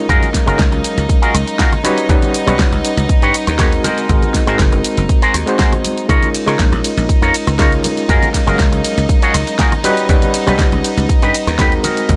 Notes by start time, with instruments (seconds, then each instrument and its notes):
Already playing: string section D#4 D#5
0.09 slap bass F#2, reed electric piano F#3 G#3 C#4 A#4 F5, clean electric guitar F4 F#4 G#4 A#4, kick, closed hi-hat, shaker
0.22 closed hi-hat, low conga, shaker
0.34 kick, snare, open hi-hat, shaker
0.46 slap bass F#1, reed electric piano F#3 G#3 C#4 A#4 F5, clean electric guitar F4 F#4 G#4 A#4, closed hi-hat, high woodblock, shaker
0.59 slap bass C#2, kick, snare, closed hi-hat, shaker
0.72 slap bass C#2, muted clean electric guitar stroke, closed hi-hat
0.84 muted clean electric guitar stroke, open hi-hat, shaker
0.97 slap bass C#2, closed hi-hat, shaker
1.09 kick, closed hi-hat, shaker
1.22 clean electric guitar F4 F#4 G#4 A#4, closed hi-hat, shaker
1.34 slap bass C#2, open hi-hat, high woodblock, shaker
1.47 muted clean electric guitar stroke, closed hi-hat, shaker
1.59 clean electric guitar F4 F#4 G#4 A#4, kick, snare, closed hi-hat, shaker
1.72 closed hi-hat, low conga, high woodblock
1.84 reed electric piano G3 C#4 D#4 F#4 B4, clean electric guitar D#4 G4 B4 C#5, open hi-hat, high conga, shaker
1.98 closed hi-hat, shaker
2.09 slap bass D#2, reed electric piano G3 C#4 D#4 B4 F#5, kick, closed hi-hat, shaker
2.22 closed hi-hat, low conga, shaker
2.34 open hi-hat, shaker
2.47 slap bass B1, reed electric piano G3 C#4 D#4 B4 F#5, clean electric guitar D#4 G4 B4 C#5, closed hi-hat, high woodblock, shaker
2.59 slap bass C#2, kick, snare, closed hi-hat, shaker
2.72 slap bass C#2, muted clean electric guitar stroke, closed hi-hat
2.84 muted clean electric guitar stroke, open hi-hat, shaker
2.97 slap bass C#2, closed hi-hat, shaker
3.09 kick, closed hi-hat, shaker
3.22 slap bass G2, clean electric guitar D#4 G4 B4 C#5, closed hi-hat, high bongo, shaker
3.34 open hi-hat, shaker
3.47 slap bass D#2, muted clean electric guitar stroke, closed hi-hat, high bongo, high woodblock, shaker
3.59 reed electric piano G#3 C4 D#4 F#4 A#4, clean electric guitar D#4 G4 B4 C#5, kick, snare, closed hi-hat, shaker
3.72 closed hi-hat
3.84 clean electric guitar F#4 G#4 A#4 C5, open hi-hat, high bongo, high conga, low conga, shaker
3.98 closed hi-hat, shaker
4.09 slap bass G#1, reed electric piano G#3 C4 D#4 F#4 A#4, kick, closed hi-hat, shaker
4.22 closed hi-hat, high bongo, low conga, shaker
4.34 kick, snare, open hi-hat, shaker
4.47 slap bass G#2, reed electric piano G#3 C4 D#4 F#4 A#4, clean electric guitar F#4 G#4 A#4 C5, closed hi-hat, high woodblock, shaker
4.59 slap bass F#1, kick, snare, closed hi-hat, shaker
4.72 slap bass F#1, muted clean electric guitar stroke, closed hi-hat, high bongo
4.84 muted clean electric guitar stroke, open hi-hat, shaker
4.97 slap bass F#1, closed hi-hat, shaker
5.09 kick, closed hi-hat, shaker
5.22 clean electric guitar F#4 G#4 A#4 C5, closed hi-hat, shaker
5.34 slap bass D#2, open hi-hat, high woodblock, shaker
5.46 reed electric piano G#3 C4 D#4 F#4 C5, muted clean electric guitar stroke, closed hi-hat, shaker
5.58 clean electric guitar F#4 G#4 A#4 C5, kick, snare, closed hi-hat, shaker
5.72 closed hi-hat, low conga, high woodblock
5.84 muted clean electric guitar stroke, open hi-hat, high conga, shaker
5.97 closed hi-hat, shaker
6.09 slap bass C#2, reed electric piano G#3 C#4 D#4 F4 A#4, clean electric guitar D#4 F4 A#4 C#5, string section D#4 D#5, kick, closed hi-hat, shaker
6.22 closed hi-hat, low conga, shaker
6.34 open hi-hat, ride, shaker
6.46 slap bass C#3, reed electric piano G#3 C#4 D#4 F4 A#4, clean electric guitar D#4 F4 A#4 C#5, closed hi-hat, high woodblock, shaker
6.59 slap bass A#1, kick, snare, closed hi-hat, shaker
6.72 slap bass A#1, muted clean electric guitar stroke, closed hi-hat
6.84 muted clean electric guitar stroke, open hi-hat, ride, shaker
6.97 slap bass A#1, closed hi-hat, shaker
7.09 kick, closed hi-hat, shaker
7.22 slap bass F2, clean electric guitar D#4 F4 A#4 C#5, closed hi-hat, high bongo, shaker
7.34 open hi-hat, ride, shaker
7.47 slap bass C#2, muted clean electric guitar stroke, closed hi-hat, high bongo, high woodblock, shaker
7.59 reed electric piano G#3 C#4 D#4 F4 A#4, clean electric guitar D#4 F4 A#4 C#5, kick, snare, closed hi-hat, shaker
7.72 closed hi-hat
7.83 muted clean electric guitar stroke, open hi-hat, ride, high bongo, high conga, low conga, shaker
7.97 closed hi-hat, shaker
8.09 slap bass F#2, reed electric piano F#3 G#3 C#4 A#4 F5, clean electric guitar F4 F#4 G#4 A#4, kick, closed hi-hat, shaker
8.22 closed hi-hat, low conga, shaker
8.34 kick, snare, open hi-hat, ride, shaker
8.46 slap bass F#1, reed electric piano F#3 G#3 C#4 A#4 F5, clean electric guitar F4 F#4 G#4 A#4, closed hi-hat, high woodblock, shaker
8.59 slap bass C#2, kick, snare, closed hi-hat, shaker
8.72 slap bass C#2, muted clean electric guitar stroke, closed hi-hat
8.84 muted clean electric guitar stroke, open hi-hat, ride, shaker
8.97 slap bass C#2, closed hi-hat, shaker
9.09 kick, closed hi-hat, shaker
9.22 clean electric guitar F4 F#4 G#4 C#5, closed hi-hat, shaker
9.34 slap bass C#2, open hi-hat, ride, high woodblock, shaker
9.47 muted clean electric guitar stroke, closed hi-hat, shaker
9.59 clean electric guitar F4 F#4 G#4 A#4, kick, snare, closed hi-hat, shaker
9.72 closed hi-hat, low conga, high woodblock
9.84 reed electric piano G3 C#4 D#4 F#4 B4, clean electric guitar C#4 D#4 G4 B4, open hi-hat, ride, high conga, shaker
9.97 closed hi-hat, shaker
10.09 slap bass D#2, reed electric piano G3 C#4 D#4 B4 F#5, kick, closed hi-hat, shaker
10.22 closed hi-hat, low conga, shaker
10.34 open hi-hat, ride, shaker
10.46 slap bass B1, reed electric piano G3 C#4 D#4 B4 F#5, clean electric guitar C#4 D#4 G4 B4, closed hi-hat, high woodblock, shaker
10.59 slap bass C#2, kick, snare, closed hi-hat, shaker
10.72 slap bass C#2, muted clean electric guitar stroke, closed hi-hat
10.84 muted clean electric guitar stroke, open hi-hat, ride, shaker
10.97 slap bass C#2, closed hi-hat, shaker
11.09 kick, closed hi-hat, shaker
11.22 slap bass G2, clean electric guitar C#4 D#4 G4 B4, closed hi-hat, high bongo, shaker
11.34 open hi-hat, ride, shaker
11.47 slap bass D#2, muted clean electric guitar stroke, closed hi-hat, high bongo, high woodblock, shaker
11.59 reed electric piano G#3 C4 D#4 F#4 A#4, clean electric guitar C#4 D#4 G4 B4, kick, snare, closed hi-hat, shaker
11.72 closed hi-hat
11.83 clean electric guitar C4 F#4 G#4 A#4, open hi-hat, ride, high bongo, high conga, low conga, shaker
11.97 closed hi-hat, shaker
12.09 slap bass G#1, reed electric piano G#3 C4 D#4 F#4 A#4, kick, closed hi-hat, shaker